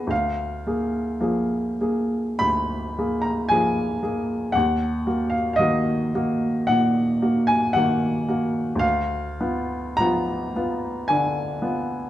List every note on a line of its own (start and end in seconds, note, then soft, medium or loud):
0.00 0.13 D#2 soft
0.00 0.13 F3 soft
0.00 0.13 B3 soft
0.00 0.13 G#4 soft
0.00 0.11 D#5 medium
0.00 0.11 F5 medium
0.07 0.62 D2 soft
0.07 2.41 F5 medium
0.67 1.18 A#3 soft
0.67 1.18 G#4 soft
1.21 1.77 F3 soft
1.21 1.76 A#3 soft
1.21 1.77 G#4 soft
1.81 2.37 A#3 soft
1.81 2.38 G#4 soft
2.39 2.95 D2 soft
2.39 3.23 B5 medium
2.99 3.47 A#3 soft
2.99 3.47 G#4 soft
3.22 3.49 A#5 medium
3.49 3.99 F3 soft
3.49 3.99 A#3 soft
3.49 3.99 G#4 soft
3.49 4.54 G#5 medium
4.03 4.51 A#3 soft
4.03 4.51 G#4 soft
4.52 5.05 D#2 soft
4.52 5.32 F#5 medium
5.07 5.56 A#3 soft
5.07 5.56 F#4 soft
5.30 5.52 F5 medium
5.53 6.67 D#5 medium
5.53 5.60 F5 soft
5.59 6.10 D#3 soft
5.59 6.10 A#3 soft
5.59 6.10 F#4 soft
6.15 6.65 A#3 soft
6.15 6.65 F#4 soft
6.67 7.21 A#2 soft
6.67 7.48 F#5 medium
7.22 7.72 A#3 soft
7.22 7.72 F#4 soft
7.47 7.75 G#5 medium
7.73 8.25 D#3 soft
7.73 8.25 A#3 soft
7.73 8.25 F#4 soft
7.73 8.81 F#5 medium
8.28 8.78 A#3 soft
8.28 8.79 F#4 soft
8.75 9.35 D2 medium
8.75 9.98 F5 medium
9.40 9.96 B3 soft
9.40 9.96 F4 soft
9.97 10.52 F3 soft
9.97 10.52 B3 soft
9.97 10.52 F4 soft
9.97 11.08 A#5 medium
10.56 11.06 B3 soft
10.56 11.06 F4 soft
11.08 11.62 D3 soft
11.08 12.10 G#5 medium
11.62 12.10 B3 soft
11.62 12.10 F4 soft